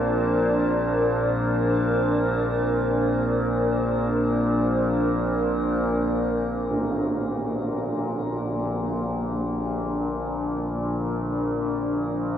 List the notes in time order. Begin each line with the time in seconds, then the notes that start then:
Already playing: A#1 A#2 A#3 D4 A#4 C5 A5
6.70 A#1 A#2 D4, tam-tam
7.61 A#4
8.40 C5